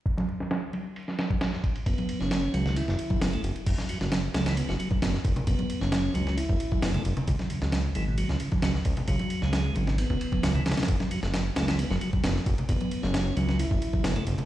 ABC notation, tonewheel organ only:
X:1
M:4/4
L:1/16
Q:1/4=133
K:F#m
V:1 name="Tonewheel organ" clef=bass
z16 | B,3 C3 F,2 E4 B, A, z2 | z2 F, z3 A, E, B, F, F, z B, z3 | B,3 C3 F,2 E4 B, A, z2 |
z2 C, z3 E, B,, F, C, C, z F, z3 | F,3 G,3 C,2 B,4 F, E, z2 | z2 F, z3 A, E, B, F, F, z B, z3 | B,3 C3 F,2 E4 B, A, z2 |]